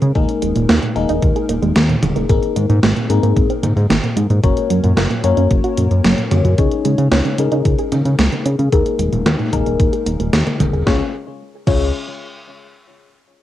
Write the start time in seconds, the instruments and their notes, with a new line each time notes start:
Already playing: fm electric piano G#3 C#4 D#4 G#4 A#4
0.02 synth arpeggio sound C#3, analog synth bass C#3, closed hi-hat
0.15 analog synth bass D#2, synth arpeggio sound A#2, fm electric piano G#3 A#3 D#4 G#4 A#4, kick, closed hi-hat
0.29 closed hi-hat
0.42 analog synth bass D#1, synth arpeggio sound G#3, closed hi-hat
0.55 analog synth bass D#1, synth arpeggio sound A#2, closed hi-hat
0.69 analog synth bass D#2, synth arpeggio sound A#3, snare, closed hi-hat
0.82 synth arpeggio sound A#2, closed hi-hat
0.95 analog synth bass D#1, fm electric piano G#3 A#3 D#4 G#4 A#4, closed hi-hat
1.09 analog synth bass D#1, synth arpeggio sound D#4, closed hi-hat
1.22 analog synth bass D#2, synth arpeggio sound A#2, kick, closed hi-hat
1.36 synth arpeggio sound G#4, closed hi-hat
1.49 analog synth bass D#1, synth arpeggio sound A#3, closed hi-hat
1.62 analog synth bass D#1, synth arpeggio sound G#3, closed hi-hat
1.76 analog synth bass D#2, synth arpeggio sound G#3, snare, closed hi-hat
1.89 synth arpeggio sound A#2, closed hi-hat
2.03 analog synth bass D#1, synth arpeggio sound D#3, closed hi-hat, mid tom
2.16 analog synth bass D#1, synth arpeggio sound A#3, closed hi-hat
2.29 analog synth bass G#1, synth arpeggio sound A#2, fm electric piano A#3 C4 D#4 G#4 A#4, kick, closed hi-hat
2.43 closed hi-hat
2.56 analog synth bass G#2, synth arpeggio sound D#3, closed hi-hat
2.69 analog synth bass G#2, synth arpeggio sound A#2, closed hi-hat
2.83 analog synth bass G#1, synth arpeggio sound G#3, snare, closed hi-hat
2.96 synth arpeggio sound A#2, closed hi-hat
3.10 analog synth bass G#2, fm electric piano A#3 C4 D#4 G#4 A#4, closed hi-hat
3.23 analog synth bass G#2, synth arpeggio sound A#3, closed hi-hat
3.36 analog synth bass G#1, synth arpeggio sound A#2, kick, closed hi-hat
3.50 synth arpeggio sound C4, closed hi-hat
3.63 analog synth bass G#2, synth arpeggio sound A#2, closed hi-hat, mid tom
3.77 analog synth bass G#2, closed hi-hat
3.90 analog synth bass G#1, synth arpeggio sound D#3, snare, closed hi-hat
4.03 synth arpeggio sound A#2, closed hi-hat
4.17 analog synth bass G#2, synth arpeggio sound G#3, closed hi-hat
4.30 analog synth bass G#2, synth arpeggio sound A#2, closed hi-hat
4.44 analog synth bass F#1, synth arpeggio sound A#2, fm electric piano A#3 C#4 F#4 A#4 C#5, kick, closed hi-hat
4.57 closed hi-hat
4.70 analog synth bass F#2, synth arpeggio sound F#3, closed hi-hat
4.84 analog synth bass F#2, synth arpeggio sound A#2, closed hi-hat
4.97 analog synth bass F#1, synth arpeggio sound A#3, snare, closed hi-hat
5.11 synth arpeggio sound A#2, closed hi-hat
5.24 analog synth bass F#2, fm electric piano A#3 C#4 F#4 A#4 C#5, closed hi-hat
5.37 analog synth bass F#2, synth arpeggio sound C#4, closed hi-hat
5.51 analog synth bass F#1, synth arpeggio sound A#2, kick, closed hi-hat
5.64 synth arpeggio sound F#4, closed hi-hat
5.77 analog synth bass F#2, synth arpeggio sound A#2, closed hi-hat
5.91 analog synth bass F#2, closed hi-hat
6.04 analog synth bass F#1, synth arpeggio sound F#3, snare, closed hi-hat
6.18 synth arpeggio sound A#2, closed hi-hat
6.31 analog synth bass F#2, synth arpeggio sound A#3, closed hi-hat, mid tom
6.44 analog synth bass F#2, synth arpeggio sound A#2, closed hi-hat
6.58 analog synth bass C#2, synth arpeggio sound C#3, fm electric piano G#3 C#4 D#4 G#4 C#5, kick, closed hi-hat
6.71 closed hi-hat
6.85 analog synth bass C#3, synth arpeggio sound G#3, closed hi-hat
6.98 synth arpeggio sound C#3, analog synth bass C#3, closed hi-hat
7.11 analog synth bass C#2, synth arpeggio sound C#4, snare, closed hi-hat
7.25 synth arpeggio sound C#3, closed hi-hat
7.38 analog synth bass C#3, fm electric piano G#3 C#4 D#4 G#4 A#4, closed hi-hat
7.52 analog synth bass C#3, synth arpeggio sound D#4, closed hi-hat
7.65 analog synth bass C#2, synth arpeggio sound C#3, kick, closed hi-hat
7.79 synth arpeggio sound G#4, closed hi-hat
7.92 analog synth bass C#3, synth arpeggio sound C#3, closed hi-hat, mid tom
8.05 analog synth bass C#3, closed hi-hat
8.19 analog synth bass C#2, synth arpeggio sound G#3, snare, closed hi-hat
8.32 synth arpeggio sound C#3, closed hi-hat
8.46 analog synth bass C#3, synth arpeggio sound C#4, closed hi-hat
8.59 analog synth bass C#3, synth arpeggio sound C#3, closed hi-hat
8.72 analog synth bass D#2, synth arpeggio sound A#2, fm electric piano G#3 A#3 D#4 G#4 A#4, kick, closed hi-hat
8.86 closed hi-hat
8.99 analog synth bass D#1, synth arpeggio sound G#3, closed hi-hat
9.12 analog synth bass D#1, synth arpeggio sound A#2, closed hi-hat
9.26 analog synth bass D#2, synth arpeggio sound A#3, snare, closed hi-hat
9.39 synth arpeggio sound A#2, closed hi-hat
9.53 analog synth bass D#1, fm electric piano G#3 A#3 D#4 G#4 A#4, kick, closed hi-hat
9.66 analog synth bass D#1, synth arpeggio sound D#4, closed hi-hat
9.79 analog synth bass D#2, synth arpeggio sound A#2, kick, closed hi-hat
9.93 synth arpeggio sound G#4, closed hi-hat
10.06 analog synth bass D#1, synth arpeggio sound A#3, closed hi-hat
10.19 analog synth bass D#1, synth arpeggio sound A#3, closed hi-hat
10.33 analog synth bass D#2, synth arpeggio sound G#4, snare, closed hi-hat
10.46 synth arpeggio sound A#3, closed hi-hat, mid tom
10.60 analog synth bass D#1, synth arpeggio sound G#3, kick, closed hi-hat, mid tom
10.73 analog synth bass D#1, synth arpeggio sound G#4, closed hi-hat
10.86 analog synth bass C#2, synth arpeggio sound C#3, fm electric piano G#3 C#4 F4 G#4 C#5, kick, snare
11.67 analog synth bass C#2, synth arpeggio sound C#3, fm electric piano G#3 C#4 F4 G#4 C#5, kick, crash